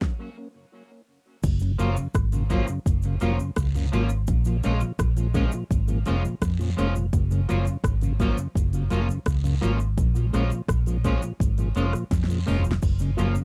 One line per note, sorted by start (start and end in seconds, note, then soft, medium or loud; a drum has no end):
0.01 kick loud
0.01 snare medium
1.43 1.76 F#1 loud
1.43 kick loud
1.43 closed hi-hat medium
1.43 crash medium
1.43 cabasa medium
1.60 1.72 F#2 medium
1.60 1.72 C#3 medium
1.60 closed hi-hat medium
1.60 cabasa medium
1.78 1.96 F#1 medium
1.78 1.95 F3 medium
1.78 1.90 F#3 medium
1.78 1.90 A#3 medium
1.78 1.95 A#3 medium
1.78 1.96 C#4 medium
1.78 1.90 F4 medium
1.78 1.96 F4 medium
1.78 closed hi-hat medium
1.78 cabasa medium
1.96 2.08 F#2 medium
1.96 2.08 C#3 medium
1.96 closed hi-hat soft
1.96 cabasa medium
2.14 2.63 G#1 medium
2.14 kick loud
2.14 cross-stick loud
2.14 closed hi-hat loud
2.14 cabasa medium
2.32 2.44 F#2 medium
2.32 2.44 C#3 medium
2.32 closed hi-hat soft
2.32 cabasa medium
2.50 2.66 F3 medium
2.50 2.62 F#3 medium
2.50 2.66 A#3 medium
2.50 2.62 A#3 medium
2.50 2.66 C#4 medium
2.50 2.66 F4 loud
2.50 2.62 F4 medium
2.50 kick medium
2.50 closed hi-hat medium
2.50 cabasa medium
2.67 2.79 F#2 medium
2.67 2.79 C#3 medium
2.67 muted clean electric guitar stroke soft
2.67 closed hi-hat soft
2.67 cabasa medium
2.86 3.19 F#1 medium
2.86 kick loud
2.86 closed hi-hat loud
2.86 cabasa medium
3.02 3.15 F#2 medium
3.02 3.15 C#3 medium
3.02 closed hi-hat soft
3.02 cabasa medium
3.20 3.38 F1 medium
3.20 3.37 F3 medium
3.20 3.33 F#3 medium
3.20 3.37 A#3 medium
3.20 3.33 A#3 medium
3.20 3.37 C#4 medium
3.20 3.33 F4 medium
3.20 3.38 F4 medium
3.20 closed hi-hat medium
3.20 cabasa medium
3.39 3.51 F#2 medium
3.39 3.51 C#3 medium
3.39 closed hi-hat soft
3.39 cabasa medium
3.56 3.89 C#2 medium
3.56 kick loud
3.56 cross-stick loud
3.56 closed hi-hat loud
3.56 cabasa medium
3.56 long guiro medium
3.75 3.86 F#2 medium
3.75 3.86 C#3 medium
3.75 closed hi-hat soft
3.75 cabasa soft
3.92 4.25 G#1 medium
3.92 4.08 F3 medium
3.92 4.03 F#3 medium
3.92 4.08 A#3 medium
3.92 4.04 A#3 medium
3.92 4.09 C#4 medium
3.92 4.04 F4 medium
3.92 4.09 F4 loud
3.92 closed hi-hat medium
3.92 cabasa soft
4.09 closed hi-hat soft
4.09 cabasa medium
4.27 4.60 A#1 loud
4.27 kick loud
4.27 closed hi-hat medium
4.27 cabasa medium
4.45 4.57 A#2 medium
4.45 4.57 F3 medium
4.45 closed hi-hat medium
4.45 cabasa medium
4.63 4.81 A#1 loud
4.63 4.80 F3 medium
4.63 4.74 G#3 medium
4.63 4.80 G#3 medium
4.63 4.75 A#3 medium
4.63 4.75 C#4 medium
4.63 4.80 C#4 medium
4.63 4.81 F4 loud
4.63 closed hi-hat medium
4.63 cabasa medium
4.80 4.92 A#2 medium
4.80 4.92 F3 medium
4.80 closed hi-hat soft
4.80 cabasa medium
4.99 5.47 A#1 loud
4.99 kick loud
4.99 cross-stick loud
4.99 closed hi-hat loud
4.99 cabasa medium
5.17 5.28 A#2 medium
5.17 5.28 F3 medium
5.17 closed hi-hat soft
5.17 cabasa medium
5.34 5.50 F3 medium
5.34 5.45 G#3 medium
5.34 5.51 G#3 medium
5.34 5.45 A#3 medium
5.34 5.46 C#4 medium
5.34 5.51 C#4 medium
5.34 5.51 F4 medium
5.34 kick medium
5.34 closed hi-hat medium
5.34 cabasa medium
5.52 5.64 A#2 medium
5.52 5.64 F3 medium
5.52 muted clean electric guitar stroke soft
5.52 closed hi-hat soft
5.52 cabasa medium
5.71 6.03 G#1 medium
5.71 kick loud
5.71 closed hi-hat loud
5.71 cabasa medium
5.88 5.99 A#2 medium
5.88 5.99 F3 medium
5.88 closed hi-hat soft
5.88 cabasa soft
6.06 6.24 F1 medium
6.06 6.22 F3 medium
6.06 6.17 G#3 medium
6.06 6.22 G#3 medium
6.06 6.17 A#3 medium
6.06 6.17 C#4 medium
6.06 6.22 C#4 medium
6.06 6.22 F4 loud
6.06 closed hi-hat medium
6.06 cabasa medium
6.25 6.35 A#2 medium
6.25 6.35 F3 medium
6.25 closed hi-hat soft
6.25 cabasa medium
6.42 6.74 F2 medium
6.42 kick loud
6.42 cross-stick loud
6.42 closed hi-hat medium
6.42 cabasa medium
6.42 long guiro medium
6.59 6.70 A#2 medium
6.59 6.70 F3 medium
6.59 closed hi-hat soft
6.59 cabasa soft
6.77 7.10 F1 medium
6.77 6.93 F3 medium
6.77 6.88 G#3 medium
6.77 6.93 G#3 medium
6.77 6.88 A#3 medium
6.77 6.88 C#4 medium
6.77 6.94 C#4 medium
6.77 6.94 F4 medium
6.77 closed hi-hat medium
6.77 cabasa medium
6.95 7.06 A#2 medium
6.95 7.06 F3 medium
6.95 closed hi-hat soft
6.95 cabasa medium
7.13 7.45 F#1 loud
7.13 kick loud
7.13 closed hi-hat medium
7.13 cabasa medium
7.31 7.41 F#2 medium
7.31 7.42 C#3 medium
7.31 closed hi-hat medium
7.31 cabasa medium
7.49 7.66 F#1 loud
7.49 7.64 F3 medium
7.49 7.59 F#3 medium
7.49 7.59 A#3 medium
7.49 7.64 A#3 medium
7.49 7.65 C#4 medium
7.49 7.59 F4 medium
7.49 7.65 F4 medium
7.49 closed hi-hat medium
7.49 cabasa medium
7.65 7.77 F#2 medium
7.65 7.77 C#3 medium
7.65 closed hi-hat soft
7.65 cabasa medium
7.84 8.32 G#1 medium
7.84 kick loud
7.84 cross-stick loud
7.84 closed hi-hat loud
7.84 cabasa medium
8.01 8.13 F#2 medium
8.01 8.13 C#3 medium
8.01 closed hi-hat soft
8.01 cabasa medium
8.20 8.36 F3 loud
8.20 8.30 F#3 medium
8.20 8.31 A#3 medium
8.20 8.36 A#3 medium
8.20 8.36 C#4 loud
8.20 8.31 F4 medium
8.20 8.37 F4 medium
8.20 kick medium
8.20 closed hi-hat medium
8.20 cabasa medium
8.37 8.48 F#2 medium
8.37 8.48 C#3 medium
8.37 muted clean electric guitar stroke soft
8.37 closed hi-hat soft
8.37 cabasa medium
8.55 8.88 F#1 medium
8.55 kick loud
8.55 closed hi-hat loud
8.55 cabasa medium
8.73 8.84 F#2 soft
8.73 8.84 C#3 medium
8.73 closed hi-hat soft
8.73 cabasa medium
8.90 9.08 F1 medium
8.90 9.06 F3 medium
8.90 9.01 F#3 medium
8.90 9.01 A#3 medium
8.90 9.07 A#3 medium
8.90 9.07 C#4 medium
8.90 9.02 F4 medium
8.90 9.07 F4 medium
8.90 closed hi-hat medium
8.90 cabasa medium
9.09 9.19 F#2 medium
9.09 9.19 C#3 medium
9.09 closed hi-hat soft
9.09 cabasa medium
9.26 9.59 C#2 loud
9.26 kick loud
9.26 cross-stick loud
9.26 closed hi-hat medium
9.26 cabasa medium
9.26 long guiro medium
9.44 9.55 F#2 medium
9.44 9.55 C#3 medium
9.44 closed hi-hat soft
9.44 cabasa soft
9.61 9.95 G#1 medium
9.61 9.77 F3 medium
9.61 9.72 F#3 medium
9.61 9.72 A#3 medium
9.61 9.78 A#3 medium
9.61 9.78 C#4 loud
9.61 9.72 F4 medium
9.61 9.78 F4 medium
9.61 closed hi-hat medium
9.61 cabasa medium
9.80 closed hi-hat soft
9.80 cabasa medium
9.98 10.30 A#1 loud
9.98 kick loud
9.98 closed hi-hat medium
9.98 cabasa medium
10.15 10.26 A#2 medium
10.15 10.26 F3 medium
10.15 closed hi-hat medium
10.15 cabasa medium
10.33 10.50 A#1 medium
10.33 10.49 F3 medium
10.33 10.44 G#3 medium
10.33 10.49 G#3 medium
10.33 10.44 A#3 medium
10.33 10.44 C#4 medium
10.33 10.50 C#4 medium
10.33 10.50 F4 medium
10.33 cross-stick medium
10.33 closed hi-hat medium
10.33 cabasa medium
10.50 10.62 A#2 medium
10.50 10.62 F3 medium
10.50 closed hi-hat soft
10.50 cabasa medium
10.68 11.17 A#1 medium
10.68 kick loud
10.68 cross-stick loud
10.68 closed hi-hat loud
10.68 cabasa medium
10.86 10.97 A#2 medium
10.86 10.97 F3 medium
10.86 closed hi-hat soft
10.86 cabasa medium
11.04 11.20 F3 medium
11.04 11.15 G#3 medium
11.04 11.20 G#3 medium
11.04 11.15 A#3 medium
11.04 11.15 C#4 medium
11.04 11.21 C#4 loud
11.04 11.21 F4 medium
11.04 kick medium
11.04 closed hi-hat medium
11.04 cabasa medium
11.22 11.33 A#2 medium
11.22 11.33 F3 medium
11.22 muted clean electric guitar stroke soft
11.22 closed hi-hat soft
11.22 cabasa medium
11.40 11.72 G#1 loud
11.40 kick loud
11.40 closed hi-hat loud
11.40 cabasa medium
11.58 11.69 A#2 medium
11.58 11.69 F3 medium
11.58 closed hi-hat soft
11.58 cabasa soft
11.75 11.92 F1 medium
11.75 11.91 F3 medium
11.75 11.86 G#3 medium
11.75 11.92 G#3 medium
11.75 11.87 A#3 medium
11.75 11.87 C#4 medium
11.75 11.92 C#4 medium
11.75 11.92 F4 loud
11.75 closed hi-hat medium
11.75 cabasa medium
11.93 12.04 A#2 medium
11.93 12.04 F3 medium
11.93 cross-stick medium
11.93 closed hi-hat soft
11.93 cabasa medium
12.11 12.43 F2 medium
12.11 kick loud
12.11 snare medium
12.11 closed hi-hat loud
12.11 cabasa medium
12.11 long guiro medium
12.24 snare medium
12.28 12.39 A#2 medium
12.28 12.39 F3 medium
12.28 closed hi-hat soft
12.28 cabasa soft
12.46 12.80 F1 medium
12.46 12.62 F3 medium
12.46 12.57 G#3 medium
12.46 12.63 G#3 medium
12.46 12.57 A#3 medium
12.46 12.57 C#4 medium
12.46 12.63 C#4 medium
12.46 12.63 F4 medium
12.46 mid tom medium
12.46 open hi-hat medium
12.46 cabasa medium
12.59 floor tom medium
12.64 12.75 A#2 medium
12.64 12.75 F3 medium
12.64 closed hi-hat soft
12.64 cabasa medium
12.72 snare medium
12.82 13.15 F#1 loud
12.82 kick loud
12.82 crash medium
12.82 cabasa medium
12.99 13.11 F#2 medium
12.99 13.11 C#3 medium
12.99 closed hi-hat medium
12.99 cabasa medium
13.17 13.35 F#1 medium
13.17 13.34 F3 medium
13.17 13.28 F#3 medium
13.17 13.28 A#3 medium
13.17 13.34 A#3 medium
13.17 13.34 C#4 medium
13.17 13.28 F4 medium
13.17 13.34 F4 medium
13.17 closed hi-hat medium
13.17 cabasa medium
13.35 13.44 F#2 medium
13.35 13.44 C#3 medium
13.35 closed hi-hat soft
13.35 cabasa medium